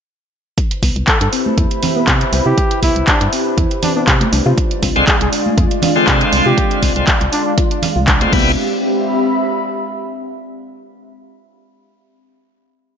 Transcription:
0.58 E4 B4 C5, kick, closed hi-hat
0.71 closed hi-hat
0.83 C2 B3, kick, open hi-hat
0.96 C2, closed hi-hat
1.08 A4, kick, clap, closed hi-hat
1.14 G4
1.21 G2 A4, closed hi-hat
1.26 E5 B5
1.33 C4, open hi-hat
1.46 high conga
1.58 E2 E4, kick, closed hi-hat
1.71 closed hi-hat
1.83 C4, open hi-hat, low conga
1.96 B3
2.08 C3, kick, clap, closed hi-hat
2.21 closed hi-hat
2.33 C2 C4, open hi-hat
2.46 C3 E4 G4
2.58 kick, closed hi-hat
2.71 closed hi-hat
2.83 C2 B3 E4, kick, open hi-hat
2.96 C2, closed hi-hat
3.08 D4, kick, clap, closed hi-hat
3.21 G2, closed hi-hat
3.33 C4, open hi-hat
3.58 E2 E4, kick, closed hi-hat
3.71 closed hi-hat
3.83 C4 D4, open hi-hat, low conga
3.96 B3 D4
4.08 C3, kick, clap, closed hi-hat
4.21 closed hi-hat, high conga
4.33 C2 G#3 D4 F4 D5, open hi-hat
4.46 C3 F4
4.58 kick, closed hi-hat
4.71 closed hi-hat
4.76 F5
4.83 C2 G#3 C4, kick, open hi-hat
4.96 C2 D3 G#3 C4 F4, closed hi-hat
5.08 G#4, kick, clap, closed hi-hat
5.21 C2 G#4, closed hi-hat
5.33 D4, open hi-hat
5.46 high conga
5.58 F2 F4, kick, closed hi-hat
5.71 closed hi-hat
5.82 D4, open hi-hat, low conga
5.96 D3 G#3 C4 F4 C6
6.08 C3, kick, clap, closed hi-hat
6.21 closed hi-hat
6.33 C2 D4, open hi-hat
6.46 C3 F4 G4
6.58 kick, closed hi-hat
6.71 closed hi-hat
6.83 C2 C4, kick, open hi-hat
6.96 C2 D3 G#3 C4 F4, closed hi-hat
7.08 kick, clap, closed hi-hat
7.21 C2, closed hi-hat
7.33 D4, open hi-hat
7.46 D4
7.58 F4, kick, closed hi-hat
7.71 closed hi-hat
7.82 F5, open hi-hat, low conga
7.96 C2 F4
8.08 D4, kick, clap, closed hi-hat
8.21 D3 G#3 C4 F4, closed hi-hat, high conga
8.32 C2 C3 G3 B3 C4 E4, kick, crash
8.41 G4
8.74 E5
8.81 B5

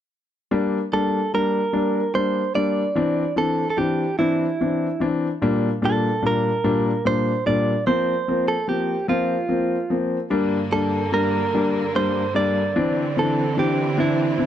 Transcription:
0.51 G3 A#3 D4
0.93 G3 A#3 D4 A4
1.33 G3 A#3 D4 A#4
1.73 G3 A#3 D4
2.14 G3 A#3 D4 C5
2.55 G3 A#3 D4 D5
2.95 E3 C4 D4
3.36 E3 C4 D4 A4
3.70 A4
3.77 E3 C4 D4 G4
4.19 E3 C4 D4 E4
4.61 E3 C4 D4
5.00 E3 C4 D4
5.42 A#2 G3 A#3 D4
5.82 A#2 G3 A#3 D4 A4
6.22 A#2 G3 A#3 D4
6.27 A#4
6.64 A#2 G3 A#3 D4
7.05 A#2 G3 A#3 D4 C5
7.46 A#2 G3 A#3 D4 D5
7.87 F3 A#3 C4 C5
8.28 F3 A#3 C4
8.48 A4
8.68 F3 A#3 C4 G4
9.08 F3 A#3 C4 F4
9.49 F3 A#3 C4
9.90 F3 A#3 C4
10.30 G2 D3 G3 A#3 D4
10.72 G3 A#3 D4 A4
11.12 G3 A#3 D4 A#4
11.54 G3 A#3 D4
11.95 G3 A#3 D4 C5
12.34 G3 A#3 D4 D5
12.76 D3 E3 C4 D4
13.17 E3 C4 D4 A4
13.57 E3 C4 D4 G4
13.97 E3 C4 D4 E4
14.38 E3 C4 D4

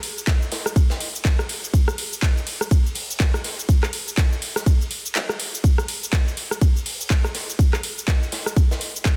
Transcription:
0.03 open hi-hat
0.18 cabasa
0.27 kick, snare, clap, ride, cabasa
0.42 cabasa
0.52 snare, open hi-hat, shaker
0.66 cross-stick, cabasa
0.76 kick, ride, cabasa
0.90 snare, cabasa, shaker
1.00 open hi-hat
1.15 cabasa, shaker
1.25 kick, snare, clap, ride, cabasa
1.39 cross-stick, cabasa
1.49 open hi-hat, shaker
1.64 cabasa
1.74 kick, ride, cabasa, shaker
1.88 cross-stick, cabasa
1.98 open hi-hat
2.13 cabasa
2.22 kick, snare, clap, ride, cabasa
2.37 cabasa
2.47 open hi-hat
2.61 cross-stick, cabasa
2.71 kick, ride, cabasa
2.86 cabasa
2.95 open hi-hat
3.11 cabasa
3.20 kick, snare, clap, ride, cabasa
3.34 cross-stick, closed hi-hat, cabasa
3.44 snare, open hi-hat, shaker
3.59 cabasa
3.69 kick, ride, cabasa
3.83 cross-stick, clap, cabasa
3.93 open hi-hat
4.08 cabasa
4.17 kick, snare, clap, ride, cabasa
4.33 cabasa
4.42 open hi-hat, shaker
4.56 cross-stick, snare, cabasa
4.66 kick, ride, cabasa
4.81 cabasa
4.91 open hi-hat, shaker
5.06 cabasa
5.15 snare, clap, ride, cabasa
5.29 cross-stick, cabasa
5.39 open hi-hat, shaker
5.55 cabasa
5.63 kick, ride, cabasa, shaker
5.78 cross-stick, cabasa
5.88 open hi-hat
6.03 cabasa
6.13 kick, snare, clap, ride, cabasa
6.28 cabasa
6.37 open hi-hat, shaker
6.51 cross-stick, cabasa
6.61 kick, ride, cabasa, shaker
6.77 cabasa
6.86 open hi-hat
7.01 cabasa
7.10 kick, snare, clap, ride, cabasa
7.24 cross-stick, closed hi-hat, cabasa
7.34 snare, open hi-hat, shaker
7.50 cabasa
7.59 kick, ride, cabasa
7.73 cross-stick, clap, cabasa
7.83 open hi-hat, shaker
7.98 cabasa
8.08 kick, snare, clap, ride, cabasa
8.23 cabasa
8.32 snare, open hi-hat, shaker
8.46 cross-stick, cabasa
8.56 kick, ride, cabasa
8.71 snare, cabasa, shaker
8.81 open hi-hat
8.95 cabasa, shaker
9.04 kick, snare, clap, ride, cabasa

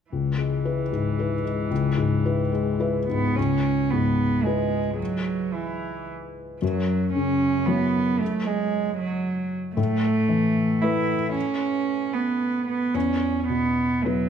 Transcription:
0.11 C#2 E3
0.38 G#3
0.65 E4 B4
0.92 G#2
1.19 E4 B4
1.44 G#3
1.71 C#2
1.98 G#2
2.25 E4 B4
2.52 G#3
2.80 E4 B4
3.08 G#2 B3
3.36 C#2 C#4
3.90 G#2 B3
4.44 G#3 E4 B4
4.98 F#3
5.53 E3
6.61 F#2 F#3
7.13 C#3 C#4
7.66 F#3 B3 E4 C#5
8.19 A3
8.45 G#3
8.98 F#3
9.75 A2 A3
10.29 E3
10.82 A3 E4 B4
11.34 C#4
12.13 B3
12.67 B3
12.94 E2 C#4
13.48 B2 B3
14.04 F#3 B3 E4 B4

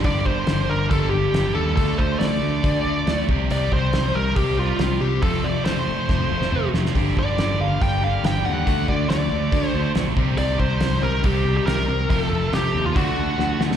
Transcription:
0.03 G1 G2 D3 G3 A#3 D4 D5, kick, open hi-hat
0.07 G4
0.25 G1 G2 D3 C5, kick
0.47 G1 G2 D3, snare, open hi-hat
0.69 G1 G2 D3 A#4
0.90 G1 G2 D3 G3 A4, kick, open hi-hat
1.10 G2 D3 G3 A#3 D4 G4
1.14 G2 D3
1.32 G1 G2 D3 G3 A#3 D4, snare, open hi-hat
1.37 G4
1.53 D#2 G2 D3 G3 A4
1.76 D2 D3 A3 D4 A4, kick, open hi-hat
1.80 F#4
1.98 D2 D3 A3 C5, kick
2.19 D2 D3 A3 D5, snare, open hi-hat
2.42 D2 D3 A3
2.62 D2 D3 A3 D4, kick, open hi-hat
2.84 D2 D3 A3 D4 F#4
2.88 D3
3.06 D2 D3 A3 D4 F#4, snare, open hi-hat
3.27 C2 C3 D#3 G3 C4, kick
3.31 G4
3.50 C2 C3 G3 C4 D5, open hi-hat
3.72 C2 C3 G3 C5, kick
3.93 C2 C3 G3, snare, open hi-hat
4.15 C2 C3 G3 A#4
4.36 C2 C3 D#3 G3 C4 G4, kick, open hi-hat
4.57 C3 D#3 G3 C4 F4 G4
4.79 C2 C3 G3, snare, open hi-hat
5.01 C2 C3 G3 C4 G4
5.22 F1 F2 C3 F3 A3 C4 F4 A4, kick, open hi-hat
5.44 F1 F2 C3 D5
5.65 F1 F2 C3 C5, snare, open hi-hat
5.88 F1 F2 C3
6.09 F1 F2 C3 F3, kick, snare
6.20 high tom
6.30 F1 F2 C3 F3 A3 C4 F4
6.42 snare
6.51 F1 F2 C3 F3 A3 C4 F4, mid tom
6.73 F1 F2 C3, snare
6.85 snare
6.94 G1 G2 D3 G3 A#3 D4 G4, kick, open hi-hat
7.17 G1 G2 D3 D5, kick
7.38 G1 G2 D3, snare, open hi-hat
7.59 G1 G2 D3 F5
7.80 G1 G2 D3 G3 G5, kick, open hi-hat
8.01 G2 D3 G3 A#3 D4 G4 F5
8.23 G1 G2 D3 G3 A#3 D4 G4 G5, snare, open hi-hat
8.45 D#2 G2 D3 G3 F#5
8.66 D2 D3 A3 D4, kick, open hi-hat
8.70 F#4
8.87 D2 D3 A3 D5, kick
9.09 D2 D3 A3 D5, snare, open hi-hat
9.31 D2 D3 A3
9.52 D2 D3 A3 D4, kick, open hi-hat
9.69 F#4 C5
9.74 D2 D3 A3 D4
9.94 A#1 D3 A3 D4 F#4, snare, open hi-hat
10.15 C2 C3 D#3 G3 C4 G4, kick
10.38 C2 C3 G3 C4 D5, open hi-hat
10.59 C2 C3 G3 C5, kick
10.80 C2 C3 G3, snare, open hi-hat
11.02 C2 C3 G3 A#4
11.23 C2 C3 D#3 G3 C4 G4, kick, open hi-hat
11.27 G4
11.44 C3 D#3 G3 C4 G4
11.49 C3
11.57 G4
11.66 C2 C3 G3 A#4, snare, open hi-hat
11.88 C2 C3 G3 C4
12.09 F1 F2 C3 F3 A3 C4 F4 A#4, kick, open hi-hat
12.22 A4
12.31 F1 F2 C3
12.52 F1 F2 C3 G4, snare, open hi-hat
12.74 D#2 F2 C3
12.86 F4
12.94 D2 D3 A3 D4 F#4, kick, open hi-hat
12.98 F#4
13.17 D2 D3 A3
13.38 D2 D3 A3, snare
13.60 D2 D3 A3, snare
13.71 snare

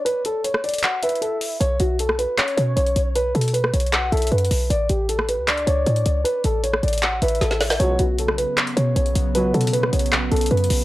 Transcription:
0.05 B4, closed hi-hat
0.25 A4, closed hi-hat
0.44 C#5, closed hi-hat
0.54 cross-stick
0.64 D5, closed hi-hat
0.69 closed hi-hat
0.74 closed hi-hat
0.78 closed hi-hat
0.83 F#5, clap
1.03 B4 E5, closed hi-hat
1.09 closed hi-hat
1.15 closed hi-hat
1.21 A4, closed hi-hat
1.41 open hi-hat
1.60 B1 C#5, closed hi-hat
1.80 B1 F#4, closed hi-hat
1.99 A4, closed hi-hat
2.09 cross-stick
2.19 B4, closed hi-hat
2.38 C#5, cross-stick, clap, closed hi-hat
2.48 closed hi-hat
2.57 B2 C#5, closed hi-hat
2.76 B1 C#5, closed hi-hat
2.87 closed hi-hat
2.96 B1, closed hi-hat
3.16 B4, closed hi-hat
3.35 B2 A4, closed hi-hat
3.41 closed hi-hat
3.48 closed hi-hat
3.53 B4, closed hi-hat
3.64 cross-stick
3.73 B1 C#5, closed hi-hat
3.80 closed hi-hat
3.86 closed hi-hat
3.93 F#5, cross-stick, clap, closed hi-hat
4.12 B1 A4 E5, closed hi-hat
4.17 closed hi-hat
4.22 closed hi-hat
4.27 closed hi-hat
4.32 F#2 B4, closed hi-hat
4.38 closed hi-hat
4.45 closed hi-hat
4.51 B1, open hi-hat
4.70 A1 D5, closed hi-hat
4.89 A1 G4, closed hi-hat
5.09 A4, closed hi-hat
5.19 cross-stick
5.29 B4, closed hi-hat
5.38 C#2
5.48 D5, cross-stick, clap, closed hi-hat
5.57 closed hi-hat
5.67 C#2 C#5, closed hi-hat
5.86 A2 C#5, closed hi-hat
5.96 closed hi-hat
6.06 C#2, closed hi-hat
6.24 B4, closed hi-hat
6.44 A1 A4, closed hi-hat
6.64 C#5, closed hi-hat
6.74 cross-stick
6.83 A1 D5, closed hi-hat
6.88 closed hi-hat
6.93 closed hi-hat
6.98 closed hi-hat
7.02 F#5, clap, closed hi-hat
7.22 A1 B4 E5, closed hi-hat
7.28 closed hi-hat
7.35 closed hi-hat
7.41 A1 A4, snare, closed hi-hat
7.51 snare
7.61 snare, open hi-hat
7.70 snare
7.80 B1 C#2 B2 C#3 F#3 B3 C#5, closed hi-hat
7.99 B1 F#4, closed hi-hat
8.19 A4, closed hi-hat
8.28 cross-stick
8.38 B4, closed hi-hat
8.57 cross-stick, clap, closed hi-hat
8.67 closed hi-hat
8.77 B2 C#5, closed hi-hat
8.96 B1 C#5, closed hi-hat
9.06 closed hi-hat
9.15 B1, closed hi-hat
9.35 C#2 B2 F#3 B4, closed hi-hat
9.54 B2 A4, closed hi-hat
9.61 closed hi-hat
9.67 closed hi-hat
9.73 B4, closed hi-hat
9.83 cross-stick
9.93 B1 C#5, closed hi-hat
9.99 closed hi-hat
10.06 closed hi-hat
10.12 cross-stick, clap, closed hi-hat
10.31 B1 A4, closed hi-hat
10.36 closed hi-hat
10.41 closed hi-hat
10.46 closed hi-hat
10.51 F#2 B4, closed hi-hat
10.57 closed hi-hat
10.64 closed hi-hat
10.70 B1, open hi-hat

